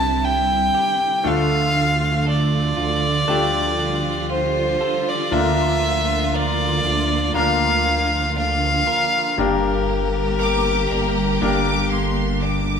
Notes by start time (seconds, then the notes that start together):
Already playing: C2 C3 D3 G3 C4 D4 E4 G4 A#4 A5
0.24 E4 G5
0.75 G4
1.24 D2 D3 F3 A3 D4 F4 A4 F5
1.76 D4
2.27 A4 D5
2.77 D2 F4
3.27 D2 G3 A3 D4 F4 G4 A4
3.79 D4
4.30 F4 C5
4.81 A4
5.09 D5
5.31 D2 D3 A#3 D4 F4 A4 E5
5.39 A#4
5.83 A#3
6.34 A#4 D5
6.84 D2 D4
7.34 D2 A#3 D4 F4 A#4 F5
7.86 A#3
8.37 D4 F5
8.87 A#4
9.38 G1 G2 G3 A#3 D4 G4 A#4
9.89 A#3
10.39 A#4 D6
10.90 G1 D4 A#5
11.40 G1 A#3 D4 G4 A#4 D6
11.92 A#3 C6
12.43 D4 D6